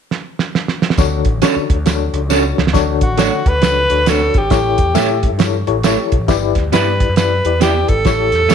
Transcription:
0.11 snare
0.39 snare
0.55 snare
0.68 snare
0.82 snare
0.90 snare
0.98 D2 D3 D4 F#4 A4 C#5, kick, snare, closed hi-hat, tambourine
1.25 A1, kick, closed hi-hat
1.42 C#4 D4 F#4 A4 C#5, snare, closed hi-hat, tambourine
1.56 muted picked electric bass stroke
1.70 D2, kick, closed hi-hat
1.86 D4 F#4 A4 C#5, snare, closed hi-hat, tambourine
2.13 C#2, closed hi-hat
2.29 C#4 D4 F#4 A4 C#5, snare, tambourine
2.58 C#2, snare
2.67 snare
2.73 D2 D3 D4 F#4 A4 C#5, kick, snare, closed hi-hat, tambourine
3.01 A1 F#4, kick, closed hi-hat
3.17 A3 D4 F#4 A4 C#5, snare, closed hi-hat, tambourine
3.46 D2 B4, kick, closed hi-hat
3.54 C#2
3.62 D4 F#4 A4 C#5, snare, closed hi-hat, tambourine
3.90 D2 D4 F#4 A4 C#5, closed hi-hat
4.06 A3 D4 F#4 A4 C#5, snare, closed hi-hat, tambourine
4.34 G#1 G4, kick, closed hi-hat
4.50 A1 A2 E4 G4 A4 C#5, kick, snare, closed hi-hat, tambourine
4.78 E2, kick, closed hi-hat
4.94 A2 A3 E4 G4 A4 C#5 E5, snare, closed hi-hat, tambourine
5.23 kick, closed hi-hat
5.32 G2
5.38 E4 G4 A4 C#5, snare, closed hi-hat, tambourine
5.67 A1 E4 G4 A4 C#5, closed hi-hat
5.83 A3 E4 G4 A4 C#5, snare, closed hi-hat, tambourine
6.12 B1, kick, closed hi-hat
6.20 A1
6.28 G1 G2 E4 G4 B4 D5, kick, snare, closed hi-hat, tambourine
6.55 D2, kick, snare, closed hi-hat
6.72 G2 B3 E4 G4 B4 D5, snare, closed hi-hat, tambourine
7.00 kick, closed hi-hat
7.09 F#2
7.16 E4 G4 B4 D5, snare, closed hi-hat, tambourine
7.45 E2 E4 G4 B4 D5, closed hi-hat
7.60 B3 E4 G4 B4 D5, snare, closed hi-hat, tambourine
7.88 G#1 A4, kick, closed hi-hat
8.05 A1 A2 E4 G4 A4 C#5, kick, snare, closed hi-hat, tambourine
8.32 E2, snare, closed hi-hat
8.49 A2 A3 E4 G4 A4 C#5, snare, closed hi-hat, tambourine

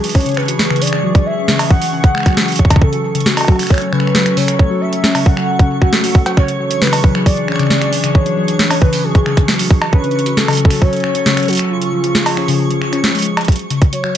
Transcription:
Already playing: E3 D4 G#4 C#6
0.04 open hi-hat
0.09 open hi-hat
0.15 C#4 C#5, kick, open hi-hat
0.20 open hi-hat
0.26 C#3, closed hi-hat
0.29 closed hi-hat
0.32 closed hi-hat
0.34 B4, finger snap, closed hi-hat
0.40 closed hi-hat
0.43 closed hi-hat
0.46 closed hi-hat
0.48 F#3, closed hi-hat
0.59 snare
0.70 C#3, finger snap
0.76 closed hi-hat
0.82 D5, open hi-hat
0.87 closed hi-hat
0.93 G#3, finger snap
1.04 F#3 C#4
1.15 kick, closed hi-hat
1.26 E5
1.37 C#4
1.48 C#3, snare
1.59 finger snap, open hi-hat, cowbell
1.70 F#3 F#5, kick
1.82 open hi-hat
1.93 C#3
2.04 kick, closed hi-hat
2.15 G#3, finger snap
2.18 finger snap
2.20 finger snap
2.23 finger snap
2.26 F#3, finger snap, kick, closed hi-hat
2.28 finger snap
2.30 finger snap
2.33 finger snap
2.34 finger snap, snare
2.48 open hi-hat
2.52 open hi-hat
2.56 C#4, kick, open hi-hat
2.65 kick
2.70 C#3, finger snap, kick, closed hi-hat, cowbell
2.76 kick
2.82 F#3 C#4 A4, kick
2.93 F#3, closed hi-hat
3.15 C#3, closed hi-hat
3.20 closed hi-hat
3.26 F#4, snare, closed hi-hat
3.32 closed hi-hat
3.37 A3, finger snap, open hi-hat, cowbell
3.41 cowbell
3.45 F#3, kick, cowbell
3.48 cowbell
3.52 cowbell
3.56 finger snap, open hi-hat, cowbell
3.63 finger snap, open hi-hat
3.67 C#5, finger snap, kick, open hi-hat
3.70 finger snap, open hi-hat
3.74 finger snap, open hi-hat
3.78 C#4, finger snap, closed hi-hat, open hi-hat
3.93 C#3 B4, finger snap
4.00 finger snap
4.07 finger snap
4.15 F#3, snare
4.26 finger snap, closed hi-hat
4.37 C#3 C#5, open hi-hat
4.48 finger snap, closed hi-hat
4.59 A3, kick
4.70 F#3
4.81 E5
4.93 closed hi-hat
5.04 C#4, snare
5.15 C#3, finger snap, open hi-hat, cowbell
5.26 F#5, kick
5.37 F#3, finger snap
5.59 C#3, kick, closed hi-hat
5.82 F#4, finger snap, kick
5.93 A3, snare
6.04 F#4, open hi-hat
6.15 kick
6.26 F#3, closed hi-hat, cowbell
6.37 C#3 E3 D4 G#4 C#5, finger snap, kick
6.48 closed hi-hat
6.59 F#3
6.71 closed hi-hat
6.82 C#3 B4, snare
6.87 finger snap
6.93 open hi-hat, cowbell
7.04 F#3, kick
7.15 F#3, finger snap
7.26 D5, kick, open hi-hat
7.37 closed hi-hat
7.48 C#4, finger snap
7.52 finger snap
7.56 finger snap
7.59 C#3, finger snap, closed hi-hat
7.63 finger snap
7.67 finger snap, snare
7.82 F#3, finger snap, closed hi-hat
7.93 open hi-hat
8.04 C#3, finger snap, closed hi-hat
8.15 C#5, kick
8.26 F#3, closed hi-hat
8.37 F#3
8.48 closed hi-hat
8.59 snare
8.71 C#4, finger snap, open hi-hat, cowbell
8.82 C#3 B4, kick
8.93 open hi-hat
9.04 F#3 G#4
9.15 kick, closed hi-hat
9.26 C#3, finger snap
9.37 finger snap, kick, closed hi-hat
9.48 F#3, snare
9.59 F#3, open hi-hat
9.71 kick
9.82 finger snap, cowbell
9.93 F#3 C#4 A4 B4, kick
10.04 C#3, closed hi-hat
10.11 closed hi-hat
10.19 closed hi-hat
10.26 F#3, closed hi-hat
10.37 A4, snare
10.48 C#3, finger snap, open hi-hat, cowbell
10.51 open hi-hat
10.53 open hi-hat
10.55 open hi-hat
10.57 open hi-hat
10.65 kick
10.71 F#3, finger snap, open hi-hat
10.82 F#3 C#5, kick
10.93 closed hi-hat
10.96 closed hi-hat
11.00 finger snap, closed hi-hat
11.15 C#4, closed hi-hat
11.26 C#3, snare
11.37 finger snap, closed hi-hat
11.40 closed hi-hat
11.43 closed hi-hat
11.46 closed hi-hat
11.48 F#3 F#4, closed hi-hat, open hi-hat
11.50 closed hi-hat, open hi-hat
11.53 closed hi-hat, open hi-hat
11.55 closed hi-hat, open hi-hat
11.57 finger snap, closed hi-hat, open hi-hat
11.70 C#3 F3 F4 G#4
11.82 closed hi-hat
11.93 F3
12.04 F3, closed hi-hat
12.15 snare
12.26 open hi-hat, cowbell
12.37 C#4, finger snap
12.48 C#3, open hi-hat
12.70 F3, closed hi-hat
12.82 F3, finger snap
12.93 C#4, finger snap, closed hi-hat
13.04 snare
13.15 G#3, open hi-hat
13.19 open hi-hat
13.22 G#3, open hi-hat
13.37 finger snap, closed hi-hat, cowbell
13.41 closed hi-hat
13.45 F#3 C#5, kick, closed hi-hat
13.48 closed hi-hat
13.52 closed hi-hat
13.56 closed hi-hat
13.59 closed hi-hat
13.70 C#3, closed hi-hat
13.82 kick, closed hi-hat
13.93 F#3 C#5, closed hi-hat
14.04 F#3, finger snap

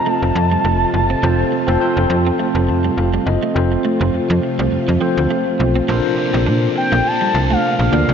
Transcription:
Already playing: C3 F3 A3 C4 F4 A4 C5 D#5
0.06 A3 A5
0.22 F1
0.35 F2, muted clean electric guitar stroke
0.52 G3
0.65 F1 A3
0.94 F#1, muted clean electric guitar stroke
1.10 C4
1.23 F1 F3 C4 F4 A4 C5
1.52 muted clean electric guitar stroke
1.67 F1 A3 C4 F4 A4 C5
1.80 C4 F4 A4 C5
1.97 F1 D4
2.10 F2 C6, muted clean electric guitar stroke
2.27 C4
2.39 A3 A5
2.55 F1
2.68 F2 A5, muted clean electric guitar stroke
2.84 G3
2.97 F1 F5
3.14 G3
3.26 F#1 D#5, muted clean electric guitar stroke
3.43 A3
3.55 F1 C3 F3 A3 C4 F4 A4 C5
3.72 muted clean electric guitar stroke
3.85 A3
4.01 F1 F3
4.14 F2
4.30 F2 F3
4.43 muted clean electric guitar stroke
4.59 C2 G3
4.72 F2, muted clean electric guitar stroke
4.88 F2 F3
5.01 F3 C4 F4 A4 C5
5.17 D2
5.30 A3
5.59 B1, muted clean electric guitar stroke
5.75 C4
5.88 A#1 A#2 C3 F3 A#3 C4 D4 F4 A4 A#4 C5
6.17 F3 A#3, muted clean electric guitar stroke
6.33 A#1 C4
6.46 A#2 D4
6.76 G5, muted clean electric guitar stroke
6.92 A#1 A#3
7.04 A#2 F3 A5
7.09 A#3
7.21 G3
7.34 C2, muted clean electric guitar stroke
7.50 A3 F5
7.79 A#1
7.92 D2 A#3 D4 F4 A4 A#4 D5 F5
8.09 C#2

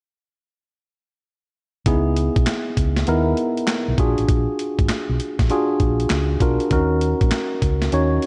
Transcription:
1.86 C#2 B3 D#4 E4 G#4, kick, closed hi-hat
2.17 closed hi-hat
2.36 B1, kick, closed hi-hat
2.47 snare, clap, closed hi-hat
2.77 C#2, kick, closed hi-hat
2.97 snare, closed hi-hat
3.07 D#2 B3 D#4 E4 A#4, closed hi-hat
3.37 closed hi-hat
3.57 closed hi-hat
3.67 snare, clap, closed hi-hat
3.88 B1
3.98 A#1 D4 F4 F#4 G#4, kick, closed hi-hat
4.18 A1, closed hi-hat
4.28 A#1, kick, closed hi-hat
4.59 closed hi-hat
4.79 G#1, kick, closed hi-hat
4.89 muted fingered electric bass stroke, snare, clap, closed hi-hat
5.09 B1
5.20 closed hi-hat
5.39 A#1, kick, snare, closed hi-hat
5.50 D4 F4 F#4 G#4, closed hi-hat
5.80 A#1, kick, closed hi-hat
6.00 closed hi-hat
6.10 C#2, snare, clap, closed hi-hat
6.40 B1 D4 F4 F#4 A#4, kick, closed hi-hat
6.60 closed hi-hat
6.71 D#2 C#4 D#4 F#4 A#4, kick, closed hi-hat
7.01 closed hi-hat
7.21 A#1, kick, closed hi-hat
7.31 snare, clap, closed hi-hat
7.62 C#2, kick, closed hi-hat
7.82 snare, closed hi-hat
7.92 D#2 C#4 D#4 F#4 C#5, closed hi-hat
8.22 closed hi-hat

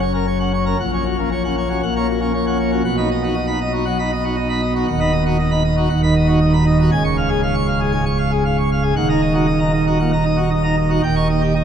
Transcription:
Already playing: F#1 F#2
0.01 C#5
0.14 C#4 A#4
0.27 C#5
0.40 C#4 F#5
0.53 C#5
0.66 C#4 A#4
0.80 A#1 A#2 F#5
0.93 C#4 C#5
1.06 F#4
1.19 A#3 C#4
1.32 C#5
1.44 C#4 F#5
1.57 C#5
1.70 C#4 F#4
1.83 A#1 A#2 F#5
1.96 A#3 C#5
2.09 F#4
2.21 A#3 C#4
2.34 C#5
2.47 C#4 F#5
2.60 C#5
2.71 C#4 F#4
2.85 B1 B2 F#5
2.98 D#4 B5
3.11 D#5
3.23 D#4 F#4
3.34 D#5
3.47 D#4 B5
3.61 D#5
3.73 D#4 F#4
3.85 F#3 F#5
3.99 D#4 B5
4.12 D#5
4.24 D#4 F#4
4.36 D#5
4.49 D#4 B5
4.62 D#5
4.76 D#4 F#4
4.88 D#1 D#2 F#5
5.00 D#4 B5
5.12 D#5
5.25 D#4 F#4
5.39 D#5
5.51 D#4 B5
5.64 D#5
5.77 D#4 F#4
5.89 D#1 D#2 F#5
6.03 D#3 B5
6.16 D#5
6.28 D#4 F#4
6.41 D#5
6.54 D#4 B5
6.66 D#5
6.79 D#4 F#4
6.92 C#1 C#2 G#5
7.04 C#6
7.17 F5
7.29 G#4
7.43 F5
7.55 C#6
7.67 F5
7.80 G#4
7.92 G#2 G#5
8.06 C#6
8.18 F5
8.31 G#4
8.45 F5
8.58 C#6
8.72 F5
8.83 G#4
8.96 D#1 D#2 F#5
9.09 D#4 A#5
9.21 D#5
9.34 D#4 F#4
9.47 D#5
9.59 D#4 A#5
9.73 D#5
9.87 D#4 F#4
9.99 A#2 F#5
10.13 D#4 A#5
10.25 D#5
10.37 D#4 F#4
10.51 D#5
10.63 D#4 A#5
10.77 D#5
10.90 D#4 F#4
11.03 D#1 D#2 G5
11.15 D#4 C#6
11.30 D#5
11.41 D#4 G4
11.56 D#5

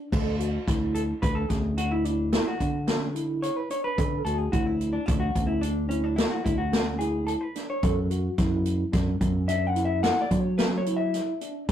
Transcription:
0.12 D2 A4, kick, crash
0.40 F#4, closed hi-hat
0.67 D2 E4, kick, snare, closed hi-hat
0.95 A4, closed hi-hat
1.22 D2 D4 B4, kick, closed hi-hat
1.35 A4
1.49 D2 C#4 G#4, kick, snare, closed hi-hat
1.78 D4 F#4, closed hi-hat
1.91 E4
2.05 D4 E4, closed hi-hat
2.33 E4, snare, closed hi-hat
2.47 F#4
2.59 D3 D4, kick, closed hi-hat
2.87 C#4, snare, closed hi-hat
3.15 E4, closed hi-hat
3.42 C#5, closed hi-hat
3.56 B4
3.70 D4 C#5, closed hi-hat
3.84 B4
3.98 D3 A4, kick, closed hi-hat
4.25 D2 F#4 A4, closed hi-hat
4.38 G#4
4.52 D2 E4 F#4, kick, closed hi-hat
4.66 E4
4.81 closed hi-hat
4.93 D4
5.06 D2 D4 E4, kick, closed hi-hat
5.20 F#4
5.35 D2 C#4, kick, closed hi-hat
5.47 E4
5.61 D4, closed hi-hat
5.89 C#4 E4, closed hi-hat
6.04 D4
6.16 E4, snare, closed hi-hat
6.30 F#4
6.44 D2 D4 E4, kick, closed hi-hat
6.58 F#4
6.72 C#4, snare, closed hi-hat
6.99 E4 G#4, closed hi-hat
7.27 A4, closed hi-hat
7.41 B4
7.56 D4, snare, closed hi-hat
7.70 C#5
7.83 F#2 A4, kick, closed hi-hat
8.10 F#4, closed hi-hat
8.38 F#2 E4, kick, snare, closed hi-hat
8.66 closed hi-hat
8.93 F#2 D4, kick, snare, closed hi-hat
9.21 F#2 C#4, kick, closed hi-hat
9.48 D4 E5, closed hi-hat
9.67 F#5
9.75 E4, closed hi-hat
9.85 E5
10.03 F#5, snare, closed hi-hat
10.21 D5
10.31 F#3 D4, kick, closed hi-hat
10.40 C#5
10.58 C#4 B4, snare, closed hi-hat
10.78 C#5
10.86 E4, closed hi-hat
10.96 E5
11.14 snare, closed hi-hat
11.41 D4, closed hi-hat
11.69 D2 A4, kick

